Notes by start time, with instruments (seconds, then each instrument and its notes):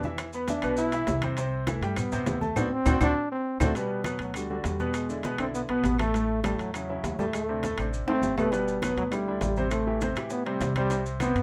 Already playing: upright bass E2, trombone D4
0.03 grand piano E3 E4 E5, high conga, maracas
0.18 high bongo, high conga, high timbale, claves, maracas
0.33 grand piano B3 B4 B5, high conga, maracas
0.48 grand piano E3 E4 E5, trombone D4, high bongo, high conga, high timbale, low timbale, maracas
0.62 upright bass B1, grand piano B2 B3 B4, high bongo, high timbale, claves, maracas
0.77 trombone E4, high bongo, high conga, maracas
0.92 grand piano E3 E4 E5, high bongo, high conga, high timbale, maracas
1.07 upright bass C2, high bongo, low bongo, high conga, high timbale, low timbale, maracas
1.22 grand piano C3 C4 C5, high bongo, high conga, high timbale, claves, maracas
1.37 grand piano C3 C4 C5, high bongo, high conga, high timbale, maracas
1.53 high conga
1.67 grand piano E3 E4 E5, trombone A3, high bongo, high conga, high timbale, low timbale, claves, maracas
1.81 upright bass G2, grand piano G3 G4 G5, high conga, high timbale, maracas
1.96 trombone B3, high bongo, high conga, low conga, high timbale, claves, maracas
2.12 grand piano C3 C4 C5, high conga, low conga, maracas
2.26 upright bass D2, high bongo, low bongo, high conga, high timbale, low timbale, maracas
2.41 grand piano A3 A4 A5, high conga, maracas
2.56 upright bass D2, trombone B3, grand piano C4 D4 F#4, low bongo, low conga, high timbale, claves, maracas
2.73 trombone C4
2.86 upright bass D2, grand piano C4 D4 F#4, low bongo, low conga, high timbale, claves, maracas
3.01 upright bass D2, grand piano C4 D4 F#4, trombone D4, low bongo, low conga, high timbale, claves, maracas
3.32 trombone C4
3.60 upright bass D2, trombone A3, grand piano C4 D4 F#4, low bongo, low conga, high timbale, claves, maracas
3.75 grand piano B2 B3 B4, trombone G3, high timbale, maracas
3.90 high conga
4.04 grand piano B2 B3 B4, trombone F#3, high conga, high timbale, low timbale, claves, maracas
4.19 upright bass D2, trombone F#3, high conga, high timbale, maracas
4.34 grand piano D3 D4 F#4, trombone G3, high conga, high timbale, claves, maracas
4.50 grand piano D3 D4 F#4, trombone G3, high conga
4.64 upright bass E2, trombone G3, high conga, high timbale, low timbale, maracas
4.80 grand piano B2 B3 B4, high conga, maracas
4.94 trombone G#3, high timbale, claves, maracas
5.09 grand piano D3 D4 E4, high conga, maracas
5.23 grand piano B2 B3 B4, high conga, high timbale, low timbale, maracas
5.38 upright bass B1, grand piano D3 D4 E4, trombone C4, high conga, high timbale, claves, maracas
5.54 trombone B3, high conga, maracas
5.68 upright bass B1, grand piano B2 B3 B4, trombone B3, high conga, high timbale
5.84 upright bass A1, high conga, high timbale, low timbale, maracas
5.99 grand piano A2 A3 A4, trombone A3, high conga, high timbale, claves, maracas
6.14 grand piano A2 A3 A4, high timbale, maracas
6.29 high conga
6.44 grand piano A2 A3 A4, trombone G3, high conga, high timbale, low timbale, claves, maracas
6.59 upright bass E2, trombone F#3, high conga, high timbale, maracas
6.73 grand piano C#3 C#4 E4, trombone F#3, high conga, high timbale, claves, maracas
6.89 grand piano C#3 C#4 E4, high conga
7.04 upright bass D2, high conga, high timbale, low timbale, maracas
7.19 grand piano A2 A3 A4, trombone G3, high conga, maracas
7.33 trombone A3, high conga, high timbale, claves, maracas
7.49 grand piano C3 C4 D4, high conga
7.63 grand piano A2 A3 A4, high conga, high timbale, low timbale, maracas
7.78 upright bass A1, grand piano C3 C4 D4, high timbale, claves, maracas
7.93 high conga, maracas
8.07 grand piano A2 A3 A4, trombone C4, high conga, high timbale
8.22 upright bass G1, high conga, low timbale, maracas
8.38 grand piano B2 B3 B4, trombone A3, high conga, low timbale, claves, maracas
8.52 grand piano B2 B3 B4, trombone G3, high bongo, high conga, high timbale, maracas
8.67 high conga, maracas
8.82 grand piano B2 B3 B4, trombone F#3, high bongo, high conga, high timbale, low timbale, claves, maracas
8.97 upright bass D2, trombone F#3, high conga, high timbale, maracas
9.12 grand piano D3 D4 E4, trombone G3, high bongo, high conga, high timbale, claves, maracas
9.27 grand piano D3 D4 E4, high conga
9.41 upright bass A1, trombone G3, high bongo, low bongo, high conga, high timbale, low timbale, maracas
9.56 grand piano C3 C4 C5, high conga, maracas
9.71 trombone A3, high bongo, high conga, high timbale, claves, maracas
9.87 grand piano E3 E4 G4, high conga
10.01 grand piano C3 C4 C5, high bongo, high conga, high timbale, low timbale, maracas
10.15 upright bass A2, grand piano E3 E4 G4, high bongo, high conga, high timbale, claves, maracas
10.30 trombone B3, high bongo, high conga, maracas
10.46 grand piano C3 C4 C5, trombone G3, high bongo, high conga, high timbale
10.61 upright bass C2, high bongo, low bongo, high conga, high timbale, low timbale, maracas
10.76 grand piano C3 C4 C5, trombone G3, high bongo, high conga, high timbale, claves, maracas
10.90 grand piano C3 C4 C5, high bongo, high timbale, maracas
11.06 high conga, maracas
11.20 grand piano C3 C4 C5, trombone B3, high bongo, high conga, high timbale, low timbale, claves, maracas
11.35 upright bass G2, high conga, high timbale, maracas